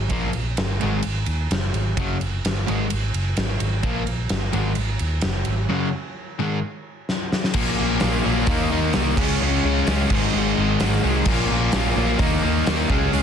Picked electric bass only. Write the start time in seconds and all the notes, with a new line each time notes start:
0.10 A#1
0.34 A#1
0.58 G1
0.82 G#1
1.04 G#1
1.27 D#2
1.51 F#1
1.74 G#1
2.21 F#1
2.45 G1
2.68 G#1
2.92 G#1
3.14 F#1
3.37 G#1
3.60 G#1
3.84 A#1
4.06 A#1
4.30 G1
4.54 G#1
4.77 G#1
5.01 D#2
5.24 F#1
5.46 G#1
7.54 A#1
7.79 A#1
8.02 A#1
8.26 A#1
8.47 D#2
8.72 D#2
8.95 C2
9.17 C#2
9.41 C#2
9.64 C#2
9.88 C#2
10.11 G#1
10.34 G#1
10.58 G#1
10.80 G#1
11.04 C2
11.27 A#1
11.50 A#1
11.74 A#1
11.96 A#1
12.19 D#2
12.44 D#2
12.68 D#2
12.89 C#2
13.14 C#2